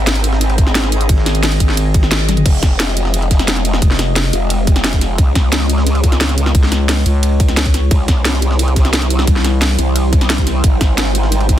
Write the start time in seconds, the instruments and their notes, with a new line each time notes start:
Already playing: wobble bass G#1, ambient pad C4 G#4 D#5
0.07 snare, closed hi-hat, ride
0.15 closed hi-hat
0.24 closed hi-hat, ride
0.33 snare
0.41 closed hi-hat, ride
0.50 ride
0.58 kick, closed hi-hat, ride
0.67 snare
0.75 snare, closed hi-hat, ride
0.84 snare
0.92 closed hi-hat, ride
1.01 closed hi-hat
1.09 fm bass G#1, kick, closed hi-hat, ride
1.18 snare
1.26 snare, closed hi-hat, ride
1.35 closed hi-hat
1.43 snare, closed hi-hat, open hi-hat
1.52 snare, closed hi-hat
1.60 fm bass G#1, kick, closed hi-hat, ride
1.69 snare
1.77 closed hi-hat, ride
1.94 kick, closed hi-hat, ride
2.03 snare
2.11 snare, closed hi-hat, ride
2.20 ride
2.29 snare, closed hi-hat, high tom, ride
2.37 closed hi-hat, mid tom
2.46 wobble bass F1, ambient pad G#3 F4 D#5, kick, closed hi-hat, ride, crash
2.63 kick, snare, closed hi-hat, ride
2.80 snare, closed hi-hat, ride
2.97 closed hi-hat, ride
3.05 snare
3.14 closed hi-hat, ride
3.22 ride
3.31 kick, snare, closed hi-hat, ride
3.39 snare, closed hi-hat
3.48 snare, closed hi-hat, ride
3.56 snare, closed hi-hat
3.65 closed hi-hat, ride
3.73 snare
3.82 fm bass F1, kick, closed hi-hat, ride
3.91 snare
3.99 snare, closed hi-hat, ride
4.16 snare, closed hi-hat, open hi-hat
4.25 snare
4.33 wobble bass F1, closed hi-hat, ride
4.50 closed hi-hat, ride
4.67 kick, closed hi-hat, ride
4.76 snare, closed hi-hat
4.84 snare, closed hi-hat, ride
4.93 kick, closed hi-hat, ride
5.01 snare, closed hi-hat, ride
5.18 wobble bass C#2, ambient pad G#3 C#5, kick, closed hi-hat, ride
5.35 kick, snare, closed hi-hat, ride
5.52 snare, closed hi-hat, ride
5.70 closed hi-hat, ride
5.78 snare
5.87 closed hi-hat, ride
5.95 ride
6.04 kick, closed hi-hat, ride
6.12 snare, closed hi-hat
6.21 snare, closed hi-hat, ride
6.29 snare, closed hi-hat
6.38 closed hi-hat, ride
6.46 snare
6.55 fm bass C#2, kick, closed hi-hat, ride
6.63 snare
6.72 snare, closed hi-hat, ride
6.89 snare, closed hi-hat, open hi-hat
6.97 snare
7.06 fm bass C#2, closed hi-hat, ride
7.23 closed hi-hat, ride
7.40 kick, closed hi-hat, ride
7.49 snare, closed hi-hat
7.57 snare, closed hi-hat, ride
7.66 kick, closed hi-hat, ride
7.74 snare, closed hi-hat, ride
7.91 wobble bass C2, ambient pad G3 E4 C5, kick, closed hi-hat, ride
8.08 kick, snare, closed hi-hat, ride
8.25 snare, closed hi-hat, ride
8.42 closed hi-hat, ride
8.51 snare
8.59 closed hi-hat, ride
8.68 ride
8.76 kick, snare, closed hi-hat, ride
8.85 snare, closed hi-hat
8.93 snare, closed hi-hat, ride
9.02 snare, closed hi-hat
9.10 closed hi-hat, ride
9.19 snare
9.27 fm bass C2, kick, closed hi-hat, ride
9.36 snare
9.45 snare, closed hi-hat, ride
9.62 snare, closed hi-hat, open hi-hat
9.70 snare
9.79 wobble bass C2, closed hi-hat, ride
9.96 closed hi-hat, ride
10.13 kick, closed hi-hat, ride
10.21 snare, closed hi-hat
10.30 snare, closed hi-hat, ride
10.38 kick, closed hi-hat, ride
10.47 snare, closed hi-hat, ride
10.64 wobble bass G#1, ambient pad G#3 D#4, kick, closed hi-hat, ride
10.81 kick, snare, closed hi-hat, ride
10.98 snare, closed hi-hat, ride
11.15 closed hi-hat, ride
11.23 snare
11.32 closed hi-hat, ride
11.40 ride
11.49 kick, closed hi-hat, ride